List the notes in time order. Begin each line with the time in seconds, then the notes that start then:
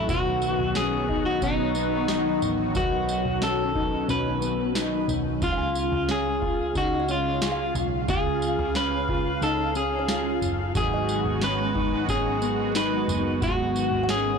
Already playing: F#3
0.08 B1 B2 D#3 F#3 B3 D#4 F#4 B4, kick, floor tom, tambourine
0.42 tambourine
0.59 B1, floor tom
0.75 C#4 G#4, snare, tambourine
1.08 F#3 B3 D#4 B4, kick, floor tom
1.26 F#4
1.41 B1 F#3 B3 C#4 D#4 B4 F#5, kick, tambourine
1.75 B3, tambourine
2.08 F#3 B3 D#4, snare, tambourine
2.12 B4
2.42 A1, floor tom, tambourine
2.75 B1 B2 D#3 F#3 B3 C#4 D#4 F#4 B4, kick, floor tom, tambourine
3.09 tambourine
3.25 B1, floor tom
3.42 C#4 A4, snare, tambourine
3.74 F#3 B3 D#4 B4, kick, floor tom
4.08 B1 F#3 B3 C#4 D#4 B4, floor tom, tambourine
4.42 B3, tambourine
4.75 F#3 B3 D#4 B4, snare, tambourine
5.08 B1, floor tom, tambourine
5.40 C#2 C#3 G#3 C#4 F4 F5, kick, floor tom, tambourine
5.45 F4 G#4
5.52 F5
5.57 G#5
5.75 tambourine
5.92 C#2, floor tom
6.09 C#4 G#4, snare, tambourine
6.42 F4, kick, floor tom
6.74 C#2 G#3 C#4 D#4 F#4 G#4, kick, tambourine
7.00 D#5
7.08 C#4 F4, tambourine
7.41 G#3 C#4 F4 G#4, snare, tambourine
7.52 F5
7.75 B1, floor tom, tambourine
8.08 C#2 C#3 G#3 C#4 F4 G#4, kick, floor tom, tambourine
8.42 tambourine
8.58 C#2, floor tom
8.75 C#4 B4, snare, tambourine
9.08 C#4 F4 G#4, kick, floor tom
9.42 C#2 C#4 D#4 F4 A4, tambourine
9.75 C#4 G#4, tambourine
9.99 C#5
10.08 G#3 C#4 F4 G#4, snare, tambourine
10.42 F#1, floor tom, tambourine
10.74 G#1 G#2 D#3 F#3 G#3 B3 F#4 G#4, kick, floor tom, tambourine
10.78 D#4 G#4
10.94 D#5
11.09 tambourine
11.25 G#1, floor tom
11.41 C#4 B4, snare, tambourine
11.75 D#4, kick, floor tom
12.08 G#1 F#3 B3 C#4 D#4 G#4, kick, tambourine
12.42 B3, tambourine
12.75 F#3 B3 D#4 B4, snare, tambourine
12.79 G#4
13.08 F#1, floor tom, tambourine
13.41 G#1 G#2 D#3 F#3 B3 F#4, kick, floor tom, tambourine
13.45 D#4 G#4
13.76 tambourine
13.91 G#1, floor tom
14.03 F#5
14.08 C#4 G#4, snare, tambourine